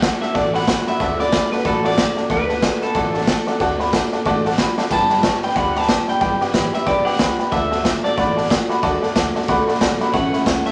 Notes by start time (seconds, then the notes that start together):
Already playing: F#5
0.02 A3 D4 F#4 A4 D5 F#5 A5, kick, snare, hi-hat pedal
0.21 D4 F#4 A4 D5 E5 F#5 A5, muted upright bass stroke, snare
0.34 A1 D3 A3 D4 F#4 A4 D5 F#5 A5, kick, snare
0.54 D4 F#4 A4 D5 F#5 B5, snare
0.61 snare
0.67 A3 D4 F#4 A4 D5 F#5 B5, kick, snare, hi-hat pedal
0.86 D4 F#4 A4 D5 E5 F#5 B5, muted upright bass stroke, snare
1.00 D2 D3 A3 D4 F#4 A4 D5 E5 F#5 A5, kick, snare
1.19 D4 F#4 A4 D5 F#5 B5, snare
1.32 A3 D4 F#4 A4 D5 F#5 B5, kick, snare, hi-hat pedal
1.52 D4 F#4 A4 B4 D5 F#5 A5, muted upright bass stroke, snare
1.59 snare
1.65 A1 D3 A3 D4 F#4 A4 D5 F#5 B5, kick, snare
1.84 D4 F#4 A4 D5 F#5 A5, snare
1.91 snare
1.97 A3 D4 F#4 A4 D5 F#5 A5, kick, snare, hi-hat pedal
2.17 D4 F#4 A4 D5 F#5 A5, muted upright bass stroke, snare
2.30 D2 D3 A3 D4 F#4 A4 B4 D5 F#5 A5, kick, snare
2.49 D4 F#4 A4 D5 F#5 A5, snare
2.62 A3 D4 F#4 A4 D5 F#5 A5, kick, snare, hi-hat pedal
2.81 D4 F#4 A4 D5 F#5 B5, muted upright bass stroke, snare
2.94 A1 D3 A3 D4 F#4 A4 D5 F#5 A5, kick, snare
3.14 D4 F#4 A4 D5 F#5 A5, snare
3.21 snare
3.27 A3 D4 F#4 A4 D5 F#5 A5, kick, snare, hi-hat pedal
3.47 D4 F#4 A4 D5 F#5 A5, muted upright bass stroke, snare
3.60 D2 D3 A3 D4 F#4 A4 D5 F#5 A5, kick, snare
3.80 D4 F#4 A4 D5 F#5 B5, snare
3.92 A3 D4 F#4 A4 D5 F#5 A5, kick, snare, hi-hat pedal
4.12 D4 F#4 A4 D5 F#5 A5, muted upright bass stroke, snare
4.25 A1 D3 A3 D4 F#4 A4 D5 F#5 A5, kick, snare
4.45 D4 F#4 A4 D5 F#5 A5, snare
4.52 snare
4.58 A3 D4 F#4 A4 D5 F#5 B5, kick, snare, hi-hat pedal
4.77 D4 F#4 A4 D5 F#5 A5, muted upright bass stroke, snare
4.90 G1 G3 D4 G4 B4 D5 G5 A5 B5, kick, snare, splash
5.10 D4 G4 B4 D5 G5 B5, snare
5.23 G3 D4 G4 B4 D5 G5 C#6, kick, snare, hi-hat pedal
5.43 D4 G4 B4 D5 G5 B5, muted upright bass stroke, snare
5.49 snare
5.56 D2 G3 D4 G4 B4 D5 F#5 G5 B5, kick, snare
5.75 D4 G4 B4 D5 G5 A5 B5, snare
5.82 snare
5.89 G3 D4 G4 B4 D5 G5 D6, kick, snare, hi-hat pedal
6.08 D4 G4 B4 D5 G5 B5, muted upright bass stroke, snare
6.21 G1 G3 D4 G4 B4 D5 G5 B5, kick, snare
6.41 D4 G4 B4 D5 F#5 G5 D6, muted upright bass stroke, snare
6.54 A1 G3 D4 G4 B4 D5 G5 B5, kick, snare, hi-hat pedal
6.73 D4 G4 B4 D5 E5 G5 B5, muted upright bass stroke, snare
6.86 B1 G3 D4 G4 B4 D5 G5 B5, kick, snare
7.05 D4 G4 B4 D5 F#5 G5 D6, muted upright bass stroke, snare
7.13 snare
7.19 C#2 G3 D4 G4 B4 D5 B5, kick, snare, hi-hat pedal
7.38 D4 G4 B4 D5 G5 B5, muted upright bass stroke, snare
7.52 D2 D3 A3 D4 F#4 A4 D5 E5 F#5 A5, kick, snare
7.71 D4 F#4 A4 D5 F#5 A5, snare
7.84 A3 D4 F#4 A4 D5 F#5 A5, kick, snare, hi-hat pedal
8.04 D4 F#4 A4 D5 F#5 A5, muted upright bass stroke, snare
8.17 A1 D3 A3 D4 F#4 A4 D5 F#5 B5, kick, snare
8.37 D4 F#4 A4 D5 F#5 A5, snare
8.44 snare
8.49 A3 D4 F#4 A4 D5 F#5 A5, kick, snare, hi-hat pedal
8.69 D4 F#4 A4 D5 F#5 B5, muted upright bass stroke, snare
8.83 D2 D3 A3 D4 F#4 A4 D5 F#5 A5, kick, snare
9.02 D4 F#4 A4 D5 F#5 A5, muted upright bass stroke, snare
9.15 D2 A3 D4 F#4 A4 D5 F#5 A5, kick, snare, hi-hat pedal
9.35 D4 F#4 A4 D5 F#5 A5, muted upright bass stroke, snare
9.42 snare
9.48 C#2 D3 A3 D4 F#4 A4 D5 F#5 B5, kick, snare
9.67 D4 F#4 A4 D5 F#5 B5, muted upright bass stroke, snare
9.75 snare
9.80 B1 A3 D4 F#4 A4 D5 F#5 A5, kick, snare, hi-hat pedal
9.99 D4 F#4 A4 D5 F#5 B5, muted upright bass stroke, snare
10.13 A1 A2 E3 A3 C#4 E4 A4 C#5 E5 F#5 A5, kick, snare
10.33 A3 C#4 E4 A4 C#5 E5 B5, muted upright bass stroke, snare
10.46 C#2 A3 C#4 E4 A4 C#5 E5 A5, kick, snare, hi-hat pedal
10.65 A3 C#4 E4 A4 C#5 E5 A5, muted upright bass stroke, snare